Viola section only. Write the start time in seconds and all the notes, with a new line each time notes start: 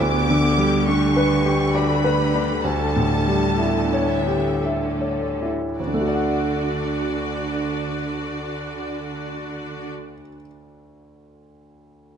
0.00 B3 G4
0.41 B3
0.86 A3
1.74 F#4
2.18 G4
2.63 G3 A4
3.58 B3
4.62 A3 A4
5.77 D4 F#4